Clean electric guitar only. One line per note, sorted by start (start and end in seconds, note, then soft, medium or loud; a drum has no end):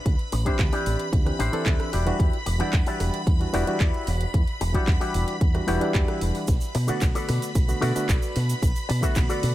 0.32 muted clean electric guitar stroke loud
0.46 0.59 D4 medium
0.46 0.59 E4 medium
0.46 0.59 G4 medium
0.46 0.59 C5 loud
0.72 1.06 D4 medium
0.72 1.06 E4 medium
0.72 1.06 G4 medium
0.72 1.06 D5 loud
1.39 1.92 D4 loud
1.39 1.92 E4 loud
1.39 1.92 G4 loud
1.39 1.93 C5 loud
1.93 2.36 E4 medium
1.93 2.36 F#4 medium
1.93 2.36 G4 medium
1.93 2.36 D5 loud
2.46 muted clean electric guitar stroke loud
2.60 2.73 E4 medium
2.60 2.73 F#4 medium
2.60 2.73 G4 medium
2.60 2.73 D5 loud
2.87 3.20 E4 medium
2.87 3.20 F#4 medium
2.87 3.20 G4 medium
2.87 3.21 D5 loud
3.53 4.07 E4 loud
3.53 4.07 F#4 loud
3.53 4.08 G4 loud
3.53 4.07 D5 loud
4.61 muted clean electric guitar stroke loud
4.74 4.88 E4 medium
4.74 4.88 F#4 medium
4.74 4.88 G4 medium
4.74 4.88 D5 loud
5.00 5.34 E4 medium
5.00 5.34 F#4 medium
5.00 5.34 G4 medium
5.00 5.34 D5 loud
5.67 6.21 E4 loud
5.67 6.21 F#4 loud
5.67 6.21 G4 loud
5.67 6.22 D5 loud
6.75 muted clean electric guitar stroke loud
6.88 7.02 F#4 medium
6.88 7.02 A4 medium
6.88 7.02 B4 medium
6.88 7.02 D5 loud
7.15 7.49 F#4 medium
7.15 7.49 A4 medium
7.15 7.49 B4 medium
7.15 7.49 D5 loud
7.81 8.36 F#4 loud
7.81 8.35 A4 loud
7.81 8.36 B4 loud
7.81 8.36 D5 loud
8.89 muted clean electric guitar stroke loud
9.02 9.16 F#4 medium
9.02 9.16 A4 medium
9.02 9.16 B4 medium
9.02 9.16 E5 loud
9.29 9.55 F#4 medium
9.29 9.55 A4 medium
9.29 9.55 B4 medium
9.29 9.55 D5 loud